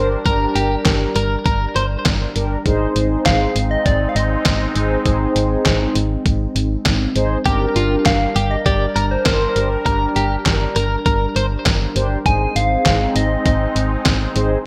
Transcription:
Already playing: fm bass G1, analog synth pad G3 D4 A#4, analog polysynth D4 G4 C5
0.25 fm bass G1, analog polysynth D4 G4 A#4, clean electric guitar A#4, kick, closed hi-hat
0.55 fm bass G1, clean electric guitar G4, closed hi-hat
0.85 fm bass G1, kick, snare, clap, closed hi-hat
1.16 fm bass G1, clean electric guitar A#4, closed hi-hat
1.46 fm bass G1, clean electric guitar A#4, kick, closed hi-hat
1.76 fm bass G1, clean electric guitar C5, closed hi-hat
2.05 fm bass G1, kick, snare, clap, closed hi-hat
2.36 fm bass G1, analog polysynth D4 G4 A#4, closed hi-hat
2.66 fm bass G#1, analog synth pad G#3 C4 D#4, analog polysynth D#4 G#4 C5, kick, closed hi-hat
2.96 fm bass G#1, closed hi-hat
3.26 fm bass G#1, soft synth lead F5, kick, snare, clap, closed hi-hat
3.56 fm bass G#1, closed hi-hat
3.71 soft synth lead D#5
3.86 fm bass G#1, soft synth lead D5, kick, closed hi-hat
4.09 soft synth lead F5
4.15 fm bass G#1, soft synth lead D#5, closed hi-hat
4.45 fm bass G#1, kick, snare, clap, closed hi-hat
4.75 fm bass G#1, analog polysynth D#4 G#4 C5, closed hi-hat
5.06 fm bass G#1, analog polysynth D#4 G#4 C5, kick, closed hi-hat
5.36 fm bass G#1, closed hi-hat
5.65 fm bass G#1, kick, snare, clap, closed hi-hat
5.95 fm bass G#1, closed hi-hat
6.26 fm bass G#1, kick, closed hi-hat
6.55 fm bass G#1, closed hi-hat
6.86 fm bass G#1, kick, snare, clap, closed hi-hat
7.16 fm bass G#1, analog polysynth D#4 G#4 C5, closed hi-hat
7.45 fm bass G1, analog synth pad G3 D4 A#4, analog polysynth D4 G4 A#4, clean electric guitar G4, kick, closed hi-hat
7.76 fm bass G1, clean electric guitar F4, closed hi-hat
8.06 fm bass G1, soft synth lead F5, kick, snare, clap, closed hi-hat
8.36 fm bass G1, clean electric guitar G4, closed hi-hat
8.51 soft synth lead D#5
8.66 fm bass G1, clean electric guitar G4, soft synth lead D5, kick, closed hi-hat
8.96 fm bass G1, clean electric guitar A#4, closed hi-hat
9.11 soft synth lead C5
9.26 fm bass G1, soft synth lead A#4, clean electric guitar C5, kick, snare, clap, closed hi-hat
9.56 fm bass G1, analog polysynth D4 G4 A#4, closed hi-hat
9.86 fm bass G1, analog polysynth D4 G4 A#4, clean electric guitar A#4, kick, closed hi-hat
10.16 fm bass G1, clean electric guitar G4, closed hi-hat
10.46 fm bass G1, kick, snare, clap, closed hi-hat
10.76 fm bass G1, clean electric guitar A#4, closed hi-hat
11.06 fm bass G1, clean electric guitar A#4, kick, closed hi-hat
11.36 fm bass G1, clean electric guitar C5, closed hi-hat
11.66 fm bass G1, kick, snare, clap, closed hi-hat
11.96 fm bass G1, analog polysynth D4 G4 C5, closed hi-hat
12.26 fm bass G#1, analog synth pad G#3 C4 D#4, analog polysynth D#4 G#4 C5, soft synth lead G#5, kick, closed hi-hat
12.56 fm bass G#1, soft synth lead F5, closed hi-hat
12.86 fm bass G#1, kick, snare, clap, closed hi-hat
13.16 fm bass G#1, soft synth lead D#5, closed hi-hat
13.46 fm bass G#1, soft synth lead D#5, kick, closed hi-hat
13.76 fm bass G#1, closed hi-hat
14.05 fm bass G#1, kick, snare, clap, closed hi-hat
14.36 fm bass G#1, analog polysynth D#4 G#4 C5, closed hi-hat

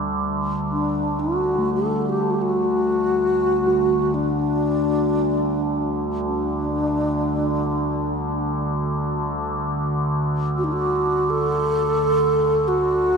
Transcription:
Already playing: synth drone D2 D3, singing bowl G3
0.71 alto flute D4
1.20 alto flute F#4
1.58 singing bowl A3
1.75 alto flute A4
2.09 alto flute G4
2.30 alto flute F#4 G4
2.42 alto flute F#4
2.79 synth drone D2 D3
3.67 singing bowl F#4
4.14 alto flute D4
6.28 alto flute D4
10.58 alto flute F#4
10.64 alto flute D#4
10.73 alto flute F#4
11.30 alto flute A4
12.68 alto flute F#4

